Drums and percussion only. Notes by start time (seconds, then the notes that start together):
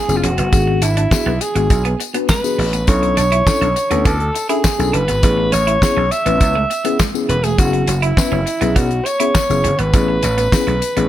0.09 closed hi-hat, tambourine
0.24 closed hi-hat
0.38 closed hi-hat
0.52 kick, closed hi-hat, tambourine
0.82 closed hi-hat, tambourine
0.97 closed hi-hat
1.11 kick, snare, clap, tambourine
1.41 closed hi-hat, tambourine
1.56 closed hi-hat, tambourine
1.70 kick, closed hi-hat, tambourine
1.85 closed hi-hat
2.00 closed hi-hat, tambourine
2.14 closed hi-hat
2.29 kick, snare, clap, tambourine
2.44 closed hi-hat, tambourine
2.59 open hi-hat
2.73 closed hi-hat, tambourine
2.87 kick, closed hi-hat, tambourine
3.03 closed hi-hat
3.17 closed hi-hat, tambourine
3.32 closed hi-hat
3.47 kick, snare, clap, tambourine
3.62 closed hi-hat
3.76 closed hi-hat, tambourine
3.91 closed hi-hat, tambourine
4.05 kick, closed hi-hat, tambourine
4.20 closed hi-hat
4.35 closed hi-hat, tambourine
4.49 closed hi-hat, tambourine
4.64 kick, snare, clap, tambourine
4.80 closed hi-hat, tambourine
4.94 closed hi-hat
5.08 closed hi-hat, tambourine
5.23 kick, closed hi-hat, tambourine
5.52 closed hi-hat, tambourine
5.68 closed hi-hat
5.82 kick, snare, clap, tambourine
6.12 closed hi-hat, tambourine
6.26 closed hi-hat, tambourine
6.40 kick, closed hi-hat, tambourine
6.71 closed hi-hat, tambourine
6.85 closed hi-hat, tambourine
6.99 kick, snare, clap, tambourine
7.15 tambourine
7.29 closed hi-hat
7.44 closed hi-hat, tambourine
7.58 kick, closed hi-hat, tambourine
7.73 closed hi-hat
7.87 closed hi-hat, tambourine
8.03 closed hi-hat
8.17 kick, snare, clap, tambourine
8.47 closed hi-hat, tambourine
8.61 closed hi-hat, tambourine
8.76 kick, closed hi-hat, tambourine
8.91 closed hi-hat
9.06 closed hi-hat, tambourine
9.20 closed hi-hat
9.35 kick, snare, clap, tambourine
9.50 closed hi-hat, tambourine
9.64 closed hi-hat
9.79 closed hi-hat
9.93 kick, closed hi-hat, tambourine
10.23 closed hi-hat, tambourine
10.38 closed hi-hat, tambourine
10.52 kick, snare, clap, tambourine
10.68 closed hi-hat
10.82 closed hi-hat, tambourine
10.97 closed hi-hat